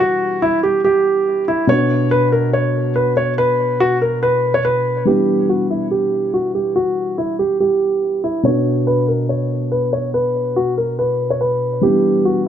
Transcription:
Already playing: E3 G3 B3 D4
0.00 F#4
0.42 E4
0.63 G4
0.84 G4
1.48 E4
1.67 B2 B3 D4 C#5
1.71 F#4
2.11 B4
2.32 A#4
2.53 C#5
2.96 B4
3.17 C#5
3.38 B4
3.80 F#4
4.02 A#4
4.23 B4
4.54 C#5
4.65 B4
5.05 E3 G3 B3 D4 G4
5.49 F#4
5.70 E4
5.91 G4
6.34 F#4
6.55 G4
6.76 F#4
7.18 E4
7.39 G4
7.60 G4
8.24 E4
8.43 B2 B3 D4 F#4 C#5
8.87 B4
9.08 A#4
9.29 C#5
9.72 B4
9.93 C#5
10.14 B4
10.56 F#4
10.78 A#4
10.99 B4
11.30 C#5
11.41 B4
11.81 E3 G3 B3 D4 G4
12.25 F#4

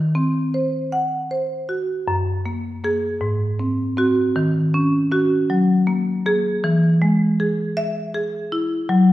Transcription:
Already playing: D#3
0.15 C4
0.54 C5
0.92 F#5
1.31 C5
1.69 F#4
2.08 F#2
2.46 A#3
2.84 A#3 G#4
3.21 G#2
3.59 C4
3.97 C4 F#4
4.36 D#3
4.74 C#4
5.12 C#4 F#4
5.50 F#3
5.87 A#3
6.26 A#3 G#4
6.64 E3
7.02 G#3
7.40 G#4
7.77 E5
8.14 G#4
8.52 E4
8.89 F#3

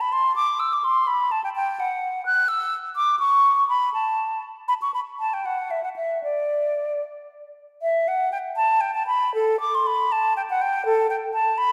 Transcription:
0.01 B5
0.12 C6
0.36 D6
0.60 E6
0.73 D6
0.84 C6
1.07 B5
1.32 A5
1.44 G5
1.56 G5
1.80 F#5
2.26 F#6
2.48 E6
2.96 D6
3.19 C#6
3.69 B5
3.94 A5
4.68 B5
4.82 C#6
4.94 B5
5.20 A5
5.34 G5
5.46 F#5
5.71 E5
5.83 F#5
5.96 E5
6.24 D5
7.82 E5
8.08 F#5
8.32 G5
8.56 A5
8.81 G5
8.95 A5
9.07 B5
9.35 A4
9.60 D6
9.75 C6
9.87 B5
10.12 A5
10.37 G5
10.50 F#5
10.61 G5
10.85 A4
11.10 G5
11.34 A5
11.58 B5

